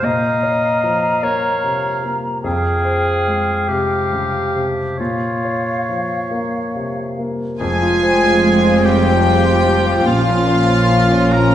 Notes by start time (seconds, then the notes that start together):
Already playing: F5
0.03 A#2 D#5 A#5
0.43 C#5
0.84 F3
1.23 A#3 C#5
1.64 C3
2.03 A#3
2.43 F2 G#4 F5 G5
2.84 C5
3.27 G#3
3.69 C3 G4
4.13 C#3
4.56 C3
4.97 A#2 F4 C#5 F5
5.45 C#5
5.89 F3
6.31 A#3
6.75 C3
7.19 A#3
7.59 F1 F2 F3 G#3 C4 F4 G#4 G#5
7.82 F4
8.03 C5
8.25 F4
8.45 G#3
8.64 C5
8.83 G3 G4 G5
9.05 C5
9.25 G3
9.45 C5
9.66 G3
9.86 C5
10.05 A#1 A#2 F3 A#3 C#4 F4 F5
10.28 F4
10.47 C#5
10.68 F4
10.90 F3
11.12 C#5
11.33 F3 A#4 A#5